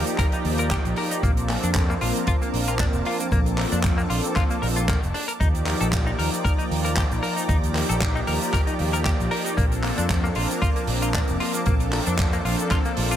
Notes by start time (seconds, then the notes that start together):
Already playing: F3 A#3 D#4 G4 D5 G5 A#5 D6
0.07 closed hi-hat, shaker
0.18 A#4, kick, clap, closed hi-hat, shaker
0.32 D#4, closed hi-hat, shaker
0.45 D#2, open hi-hat
0.58 A#4, closed hi-hat, shaker
0.71 G4, kick, clap, closed hi-hat, shaker
0.85 A#1, closed hi-hat, shaker
0.96 A#4, open hi-hat
1.11 D#4, closed hi-hat, shaker
1.22 A#1 F3 A#3 C4 D4 A4 A5 D6, kick, closed hi-hat, shaker
1.37 closed hi-hat, shaker
1.49 A#2, clap, open hi-hat
1.63 F2 D4, closed hi-hat, shaker
1.75 kick, clap, closed hi-hat, shaker
1.90 A#3, shaker
2.00 A#1 F3 A#3 C4 D4 F4 A#4, open hi-hat
2.16 closed hi-hat, shaker
2.27 F4, kick, closed hi-hat, shaker
2.42 A#3, closed hi-hat, shaker
2.54 A#1, open hi-hat
2.68 F4, closed hi-hat, shaker
2.79 D4, kick, clap, closed hi-hat, shaker
2.93 F1, closed hi-hat, shaker
3.05 F4, open hi-hat
3.20 A#3, closed hi-hat, shaker
3.31 A#1 F3 A#3 C4 D4 A4, kick, closed hi-hat, shaker
3.46 closed hi-hat, shaker
3.58 A#2, clap, open hi-hat
3.72 F2 D4, closed hi-hat, shaker
3.84 kick, clap, closed hi-hat, shaker
3.98 A#3, shaker
4.10 A#1 F3 A#3 C4 D4 F4 A4, open hi-hat
4.24 closed hi-hat, shaker
4.36 F4, kick, clap, closed hi-hat, shaker
4.50 A#3, closed hi-hat, shaker
4.62 A#1 F3 A#3 C4 D4 A4 A#4, open hi-hat
4.76 F4, closed hi-hat, shaker
4.88 A#3, kick, clap, closed hi-hat, shaker
5.03 F1, closed hi-hat, shaker
5.14 D4, open hi-hat
5.28 A#4, closed hi-hat, shaker
5.40 D#2 F3 A#3 D#4 G4 D5 G5 A#5 D6, kick, closed hi-hat, shaker
5.55 closed hi-hat, shaker
5.66 D#3, clap, open hi-hat
5.81 A#1 A4, closed hi-hat, shaker
5.92 kick, clap, closed hi-hat, shaker
6.07 D#4, shaker
6.18 D#2 F3 A#3 D#4 A#4 D5, open hi-hat
6.34 closed hi-hat, shaker
6.45 A#4, kick, closed hi-hat, shaker
6.58 D#4, closed hi-hat, shaker
6.71 D#2, open hi-hat
6.85 A#4, closed hi-hat, shaker
6.97 G4, kick, clap, closed hi-hat, shaker
7.12 A#1, closed hi-hat, shaker
7.23 A#4, open hi-hat
7.37 D#4, closed hi-hat, shaker
7.48 D#2 F3 A#3 D#4 G4 D5, kick, closed hi-hat, shaker
7.64 closed hi-hat, shaker
7.75 D#3, clap, open hi-hat
7.89 A#1 A4, closed hi-hat, shaker
8.01 kick, clap, closed hi-hat, shaker
8.16 D#4, shaker
8.27 D#2 F3 A#3 D#4 G4 A#4 D5, open hi-hat
8.41 closed hi-hat, shaker
8.53 A#4, kick, clap, closed hi-hat, shaker
8.67 D#4, closed hi-hat, shaker
8.79 D#2, open hi-hat
8.93 A#4, closed hi-hat, shaker
9.05 G4, kick, clap, closed hi-hat, shaker
9.20 A#1, closed hi-hat, shaker
9.31 A#4, open hi-hat
9.45 D#4, closed hi-hat, shaker
9.57 A#1 F3 A#3 C4 D4 A4 A5 D6, kick, closed hi-hat, shaker
9.72 closed hi-hat, shaker
9.83 A#2, clap, open hi-hat
9.98 F2 D4, closed hi-hat, shaker
10.10 kick, clap, closed hi-hat, shaker
10.24 A#3, shaker
10.35 A#1 F3 A#3 C4 D4 F4 A#4, open hi-hat
10.51 closed hi-hat, shaker
10.62 F4, kick, closed hi-hat, shaker
10.76 A#3, closed hi-hat, shaker
10.87 A#1, open hi-hat
11.02 F4, closed hi-hat, shaker
11.14 D4, kick, clap, closed hi-hat, shaker
11.28 F1, closed hi-hat, shaker
11.40 F4, open hi-hat
11.54 A#3, closed hi-hat, shaker
11.66 A#1 F3 A#3 C4 D4 A4, kick, closed hi-hat, shaker
11.80 closed hi-hat, shaker
11.93 A#2, clap, open hi-hat
12.06 F2 D4, closed hi-hat, shaker
12.18 kick, clap, closed hi-hat, shaker
12.33 A#3, closed hi-hat, shaker
12.44 A#1 F3 A#3 C4 D4 F4 A4, open hi-hat
12.59 closed hi-hat, shaker
12.70 F4, kick, clap, closed hi-hat, shaker
12.85 A#3, closed hi-hat, shaker
12.97 A#1, open hi-hat
13.11 F4, closed hi-hat, shaker